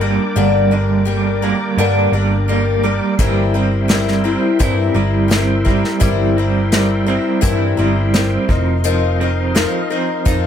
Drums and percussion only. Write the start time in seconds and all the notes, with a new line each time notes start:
3.19 kick, closed hi-hat
3.89 snare, closed hi-hat
4.08 snare
4.60 kick, closed hi-hat
5.31 snare, closed hi-hat
5.66 kick
5.84 snare
6.01 kick, closed hi-hat
6.72 snare, closed hi-hat
7.43 kick, closed hi-hat
8.14 snare, closed hi-hat
8.49 kick
8.84 closed hi-hat
9.55 snare, closed hi-hat
10.26 kick, closed hi-hat